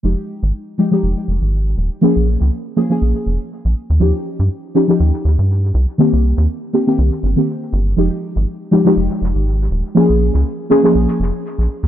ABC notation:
X:1
M:4/4
L:1/16
Q:"Swing 16ths" 1/4=121
K:Fm
V:1 name="Synth stab"
[F,A,EG]6 [F,A,EG] [F,A,EG]8- [F,A,EG] | [F,B,DA]6 [F,B,DA] [F,B,DA]8- [F,B,DA] | [F,DEG]6 [F,DEG] [F,DEG]6- [F,DEG] z2 | [E,B,CG]6 [E,B,CG] [E,B,CG]4 [E,B,CG]4- [E,B,CG] |
[F,A,EG]6 [F,A,EG] [F,A,EG]8- [F,A,EG] | [F,B,DA]6 [F,B,DA] [F,B,DA]8- [F,B,DA] |]
V:2 name="Analog synth bass" clef=bass
F,,, z2 A,,, z4 F,,, z F,,, A,,,3 E,,, z | z B,,,2 D,, z4 B,,, z F,,, z2 B,,, z E,, | E,, z2 G,, z4 E,, z E,, G,,3 C,, z | z C,,2 E,, z4 C,, z G,,, z3 G,,,2 |
F,,, z2 A,,, z4 F,,, z F,,, A,,,3 E,,, z | z B,,,2 D,, z4 B,,, z F,,, z2 B,,, z E,, |]